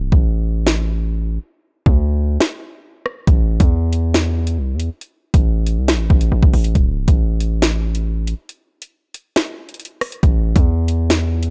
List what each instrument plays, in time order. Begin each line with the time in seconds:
0.01 808-style bass C1
0.12 808-style bass A1, kick
0.67 snare
1.86 808-style bass D2, kick
2.40 snare
3.06 cross-stick
3.27 808-style bass A1, kick, closed hi-hat
3.60 808-style bass E2, kick, closed hi-hat
3.93 closed hi-hat
4.14 snare, closed hi-hat
4.47 closed hi-hat
4.58 808-style bass C2
4.74 808-style bass E2
4.80 closed hi-hat
5.01 closed hi-hat
5.34 808-style bass A1, kick, closed hi-hat
5.67 closed hi-hat
5.77 808-style bass C2
5.88 snare, closed hi-hat
5.94 808-style bass A1
6.10 808-style bass A1, kick
6.21 closed hi-hat
6.32 808-style bass A1
6.43 808-style bass A1, kick
6.53 808-style bass A1, open hi-hat
6.64 closed hi-hat
6.75 808-style bass D1, kick, closed hi-hat
6.97 808-style bass C1
7.08 808-style bass A1, kick, closed hi-hat
7.40 closed hi-hat
7.62 snare, closed hi-hat
7.95 closed hi-hat
8.27 closed hi-hat
8.49 closed hi-hat
8.82 closed hi-hat
9.14 closed hi-hat
9.36 snare, closed hi-hat
9.69 closed hi-hat
9.74 closed hi-hat
9.80 closed hi-hat
9.85 closed hi-hat
10.01 cross-stick, open hi-hat
10.12 closed hi-hat
10.23 808-style bass A1, kick, closed hi-hat
10.56 808-style bass E2, kick, closed hi-hat
10.88 closed hi-hat
11.10 snare, closed hi-hat
11.43 closed hi-hat